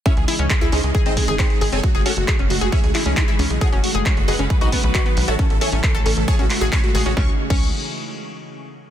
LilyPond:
<<
  \new Staff \with { instrumentName = "Supersaw synth" } { \time 4/4 \key cis \minor \tempo 4 = 135 <e' gis' cis'' e''>16 gis'16 gis'16 r16 gis'16 gis'16 <dis' gis' bis' dis''>16 gis'16 gis'16 <dis' gis' bis' dis''>16 gis'16 gis'16 <dis' gis' bis' dis''>16 gis'16 gis'16 <gis' a' cis'' gis''>16 | fis'16 fis'16 <fis' a' cis'' fis''>16 fis'16 fis'16 r16 fis'16 fis'16 <e' gis' cis'' e''>16 gis'16 gis'16 gis'16 <dis' e' gis' dis''>16 gis'16 gis'16 gis'16 | <fis' a' cis'' fis''>16 fis'16 fis'16 r16 fis'16 fis'16 <fis' b' dis'' fis''>16 b'16 b'16 <dis' fis' b' dis''>16 b'16 b'16 <fis' b' dis'' fis''>16 b'16 b'16 <a' cis'' e'' a''>16 | a'16 a'16 <gis' cis'' e'' gis''>16 a'16 a'16 r16 a'16 a'16 <cis'' gis'' a'' cis'''>16 fis'16 fis'16 fis'16 <cis'' gis'' a'' cis'''>16 fis'16 fis'16 fis'16 |
cis'''16 r8 cis'''8 r2 r8. | }
  \new Staff \with { instrumentName = "Synth arpeggio sound" } { \time 4/4 \key cis \minor cis'16 r16 e'16 cis'16 r16 e'16 cis'16 r16 gis'16 bis16 r16 gis'16 bis16 r16 gis'16 bis16 | r16 gis'16 cis'16 r16 gis'16 cis'16 r16 gis'16 cis'16 r16 e'16 cis'16 r16 e'16 cis'16 r16 | gis'16 cis'16 r16 gis'16 cis'16 r16 gis'16 cis'16 r16 fis'16 b16 r16 fis'16 b16 r16 fis'16 | cis'16 r16 a'16 cis'16 r16 a'16 cis'16 r16 gis'16 cis'16 r16 gis'16 cis'16 r16 gis'16 cis'16 |
cis'16 r8 cis'8 r2 r8. | }
  \new Staff \with { instrumentName = "Analog synth pad" } { \clef bass \time 4/4 \key cis \minor <cis e gis dis'>16 <cis e gis dis'>8 <cis e gis dis'>8 <cis e gis dis'>16 <cis e gis dis'>8 <bis, dis gis dis'>16 <bis, dis gis dis'>8 <bis, dis gis dis'>8 <bis, dis gis dis'>8 r16 | <cis gis a fis'>16 <cis gis a fis'>8 <cis gis a fis'>8 <cis gis a fis'>16 <cis gis a fis'>8 <cis e gis dis'>16 <cis e gis dis'>8 <cis e gis dis'>8 <cis e gis dis'>8 r16 | <cis gis a fis'>16 <cis gis a fis'>8 <cis gis a fis'>8 <cis gis a fis'>16 <cis gis a fis'>8 <dis fis b fis'>16 <dis fis b fis'>8 <dis fis b fis'>8 <dis fis b fis'>8 r16 | <cis e a e'>16 <cis e a e'>8 <cis e a e'>8 <cis e a e'>16 <cis e a e'>8 <cis gis a fis'>16 <cis gis a fis'>8 <cis gis a fis'>8 <cis gis a fis'>8 r16 |
<cis e dis' gis'>8 r2. r8 | }
  \new Staff \with { instrumentName = "Analog synth bass" } { \clef bass \time 4/4 \key cis \minor r16 cis,16 r16 cis,16 r16 cis,16 cis,16 cis,16 r16 gis,,16 r16 gis,,16 r8 gis,,16 fis,,16 | r16 fis,,16 r16 fis,,16 r16 fis,,16 fis,,16 fis,,16 r16 cis,16 r16 cis,16 r8 cis,16 b,,16 | r16 fis,,16 r16 fis,,16 r16 fis,,16 fis,,16 fis,,16 r16 b,,16 r16 b,,16 r8 b,,16 a,,16 | r16 a,,16 r16 a,,16 r16 a,,16 a,,16 a,,16 r16 a,,16 r16 a,,16 r8 a,,16 a,,16 |
cis,16 r8 cis,8 r2 r8. | }
  \new DrumStaff \with { instrumentName = "Drums" } \drummode { \time 4/4 <hh bd>16 hh16 hho16 hh16 <hc hh bd>16 hh16 hho16 hh16 <hh bd>16 hh16 <hho bd>16 hh16 <hc hh bd>16 hh16 hho16 hh16 | <hh bd>16 hh16 hho16 hh16 <hc hh bd>16 hh16 hho16 hh16 <hh bd>16 hh16 <hc hho>8 <hc hh bd>16 hh16 hho16 hh16 | <hh bd>16 hh16 hho16 hh16 <hc hh bd>16 hh16 hho16 hh16 <hh bd>16 hh16 <hho bd>16 hh16 <hc hh bd>16 hh16 hho16 hh16 | <hh bd>16 hh16 hho16 hh16 <hc hh bd>16 hh16 hho8 <hh bd>16 hh16 <hc hho>8 <hc hh bd>16 hh16 hho16 hh16 |
<bd sn>8. <cymc bd>16 r4 r4 r4 | }
>>